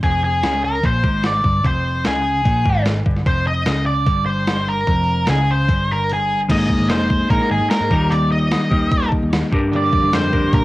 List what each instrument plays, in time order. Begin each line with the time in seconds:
0.03 picked electric bass F1, clean electric guitar F2, lead electric guitar G#4, kick, open hi-hat
0.24 lead electric guitar G#4
0.43 picked electric bass C#2, clean electric guitar C#3, snare, open hi-hat
0.53 snare
0.64 lead electric guitar A#4
0.83 picked electric bass A#1, clean electric guitar A#2, lead electric guitar C5, kick, open hi-hat
1.03 picked electric bass G#1, clean electric guitar G#2, kick
1.23 lead electric guitar D5, snare, open hi-hat
1.44 picked electric bass G1, clean electric guitar G2, kick
1.64 picked electric bass F1, clean electric guitar F2, lead electric guitar C5, kick, open hi-hat
2.04 picked electric bass C#2, clean electric guitar C#3, lead electric guitar G#4, snare, open hi-hat
2.16 snare
2.45 picked electric bass A#1, clean electric guitar A#2, kick, open hi-hat
2.65 picked electric bass G#1, clean electric guitar G#2, kick
2.85 snare, open hi-hat
3.05 picked electric bass G1, clean electric guitar G2, kick
3.16 snare
3.26 picked electric bass F1, clean electric guitar F2, lead electric guitar C5, kick, open hi-hat
3.47 lead electric guitar D#5
3.66 picked electric bass C#2, clean electric guitar C#3, snare, open hi-hat
3.86 lead electric guitar D5
4.07 picked electric bass G1, clean electric guitar G2, kick, open hi-hat
4.26 lead electric guitar C5
4.47 snare, open hi-hat
4.68 lead electric guitar A#4
4.87 picked electric bass F1, clean electric guitar F2, kick, open hi-hat
5.27 picked electric bass C#2, clean electric guitar C#3, lead electric guitar G#4, snare, open hi-hat
5.38 snare
5.51 lead electric guitar C5
5.69 picked electric bass G1, clean electric guitar G2, kick, open hi-hat
5.91 lead electric guitar A#4
6.09 lead electric guitar G#4, open hi-hat
6.48 picked electric bass G#1, clean electric guitar G#3 A#3 D#4 G#4, lead electric guitar D#5, kick, open hi-hat, crash
6.69 picked electric bass F1, kick
6.80 picked electric bass G#1
6.90 picked electric bass F1, lead electric guitar C5, snare, open hi-hat
7.10 kick
7.30 picked electric bass A#1, clean electric guitar G#3 A#3 D#4 G#4, lead electric guitar A#4, kick, open hi-hat
7.40 snare
7.51 picked electric bass G#1, lead electric guitar G#4
7.60 picked electric bass G#2
7.70 lead electric guitar A#4, snare, open hi-hat
7.81 picked electric bass G#2
7.90 picked electric bass D#2, clean electric guitar D#3 G3 A#3 D#4 G4, kick
8.10 lead electric guitar D5, open hi-hat
8.32 lead electric guitar D#5
8.51 snare, open hi-hat
8.70 picked electric bass D#2, clean electric guitar D#3 G3 A#3 D#4 G4, kick
8.92 kick, open hi-hat
9.03 snare
9.12 kick
9.23 picked electric bass D#2
9.33 picked electric bass D#2, snare, open hi-hat
9.52 picked electric bass G2, clean electric guitar G3 D4 G4 A#4, kick
9.72 clean electric guitar G2 D3 G3 A#3 D4, open hi-hat
9.76 lead electric guitar D5
9.93 picked electric bass F2, kick
10.04 picked electric bass G2
10.13 picked electric bass F2, lead electric guitar C5, snare, open hi-hat
10.33 clean electric guitar G3 D4 G4 A#4, kick
10.53 picked electric bass A#2, lead electric guitar A#4, kick, open hi-hat